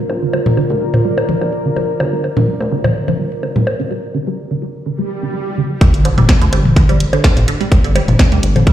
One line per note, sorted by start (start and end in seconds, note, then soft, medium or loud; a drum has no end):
0.00 3.91 F4 medium
0.00 3.90 A#4 medium
0.00 3.91 D5 medium
0.10 0.38 G1 loud
0.10 high bongo soft
0.22 0.25 D3 medium
0.33 0.40 G3 medium
0.33 high bongo medium
0.46 0.53 G1 medium
0.46 mid tom medium
0.46 high tom medium
0.57 0.60 D3 medium
0.57 high bongo soft
0.70 0.77 D2 medium
0.70 0.76 G3 medium
0.81 1.34 G1 medium
0.94 0.96 D3 medium
0.94 mid tom medium
0.94 high bongo soft
1.05 1.12 G3 medium
1.18 high bongo medium
1.29 1.31 D3 medium
1.29 high tom medium
1.41 1.93 A#1 medium
1.41 1.47 G3 medium
1.41 high bongo soft
1.65 1.68 D3 medium
1.76 1.83 G3 medium
1.76 high tom soft
1.76 high bongo soft
2.00 2.29 G1 loud
2.00 2.03 D3 medium
2.00 high bongo medium
2.13 2.19 G3 medium
2.24 high bongo soft
2.37 2.44 G1 medium
2.37 2.39 D3 medium
2.37 mid tom medium
2.37 high tom medium
2.48 2.54 G3 medium
2.60 2.67 D2 medium
2.60 high bongo soft
2.71 3.24 G1 medium
2.71 2.74 D3 medium
2.84 2.90 G3 medium
2.84 mid tom medium
2.84 high tom medium
2.84 high bongo medium
3.08 3.10 D3 medium
3.08 high tom medium
3.08 high bongo soft
3.19 3.26 G3 medium
3.43 3.46 D3 medium
3.43 high bongo soft
3.56 3.63 G1 medium
3.56 3.62 G3 medium
3.56 mid tom medium
3.67 high bongo medium
3.79 3.82 D3 medium
3.91 3.97 G3 medium
4.14 4.17 D3 medium
4.27 4.33 G3 medium
4.51 4.53 D3 medium
4.62 4.69 G3 medium
4.86 4.89 D3 medium
4.86 swell medium
4.99 5.04 G3 medium
5.22 5.25 D3 medium
5.34 5.40 G3 medium
5.57 5.60 D3 medium
5.70 5.76 G3 medium
5.81 6.10 G1 loud
5.81 5.88 G3 medium
5.81 kick loud
5.81 closed hi-hat medium
5.81 impact medium
5.94 closed hi-hat soft
6.05 6.08 D3 medium
6.05 closed hi-hat medium
6.05 high bongo soft
6.18 6.25 G1 loud
6.18 6.24 G3 medium
6.18 closed hi-hat soft
6.18 mid tom loud
6.18 high tom medium
6.29 kick loud
6.29 snare loud
6.29 closed hi-hat medium
6.29 high bongo medium
6.41 6.48 D2 medium
6.41 6.44 D3 medium
6.41 closed hi-hat soft
6.53 7.05 G1 medium
6.53 6.59 G3 medium
6.53 closed hi-hat medium
6.53 high bongo soft
6.65 mid tom medium
6.65 high tom medium
6.76 6.79 D3 medium
6.76 kick loud
6.76 closed hi-hat medium
6.89 6.95 G3 medium
6.89 closed hi-hat soft
6.89 high tom medium
6.89 high bongo soft
7.00 closed hi-hat medium
7.13 7.15 D3 medium
7.13 closed hi-hat soft
7.13 high bongo medium
7.24 7.31 G3 medium
7.24 kick loud
7.24 snare loud
7.24 closed hi-hat medium
7.37 7.44 G1 medium
7.37 closed hi-hat soft
7.37 mid tom medium
7.37 high bongo soft
7.48 7.51 D3 medium
7.48 closed hi-hat medium
7.61 7.66 G3 medium
7.61 closed hi-hat soft
7.72 8.00 G1 loud
7.72 kick loud
7.72 closed hi-hat medium
7.72 high bongo soft
7.84 7.87 D3 medium
7.84 closed hi-hat soft
7.96 8.02 G3 medium
7.96 closed hi-hat medium
7.96 high bongo medium
8.08 8.15 G1 loud
8.08 closed hi-hat soft
8.08 mid tom loud
8.08 high tom medium
8.19 8.22 D3 medium
8.19 kick loud
8.19 snare loud
8.19 closed hi-hat medium
8.19 high bongo soft
8.32 8.39 D2 medium
8.32 8.38 G3 medium
8.32 closed hi-hat soft
8.43 8.73 G1 medium
8.43 closed hi-hat loud
8.56 8.58 D3 medium
8.56 closed hi-hat soft
8.56 mid tom medium
8.56 high tom medium
8.56 high bongo soft
8.67 8.73 G3 medium
8.67 kick loud
8.67 closed hi-hat medium